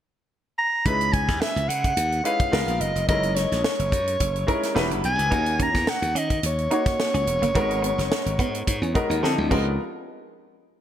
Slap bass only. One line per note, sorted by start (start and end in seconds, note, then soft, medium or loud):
0.86 1.29 C#2 medium
1.29 1.39 D#2 medium
1.56 1.67 C#2 medium
1.68 1.92 C#3 medium
1.97 2.21 D#2 medium
2.53 2.66 C#2 medium
2.68 2.79 A#1 medium
2.80 2.93 F#1 medium
2.95 3.06 F1 medium
3.08 3.45 F#1 medium
3.52 3.63 A#1 medium
3.79 3.90 F#1 medium
3.92 4.16 F#2 medium
4.20 4.44 F#1 medium
4.76 4.91 E1 medium
4.91 5.02 F#1 medium
5.04 5.17 B1 medium
5.19 5.30 C#2 medium
5.32 5.68 D#2 loud
5.75 5.86 E2 medium
6.02 6.13 D#2 medium
6.15 6.39 D#3 loud
6.43 6.67 D#2 medium
7.14 7.25 C#2 medium
7.27 7.40 E1 medium
7.42 7.53 F#1 medium
7.55 7.92 G#1 medium
7.98 8.09 F#1 medium
8.26 8.37 G#1 medium
8.39 8.62 G#2 medium
8.67 8.80 G#2 medium
8.82 8.93 E2 medium
9.10 9.21 D#2 medium
9.23 9.36 D3 loud
9.38 9.49 D2 medium
9.51 9.77 C#2 medium